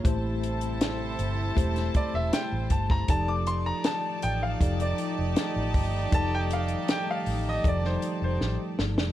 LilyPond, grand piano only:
\new Staff \with { instrumentName = "Grand piano" } { \time 4/4 \key f \mixolydian \tempo 4 = 79 ees''16 r2 r16 d''16 e''16 g''8 a''16 bes''16 | a''16 d'''16 c'''16 bes''16 a''8 g''16 f''8 d''8 r4 r16 | a''16 g''16 f''8 g''16 f''8 ees''16 d''16 c''8 c''8 r8. | }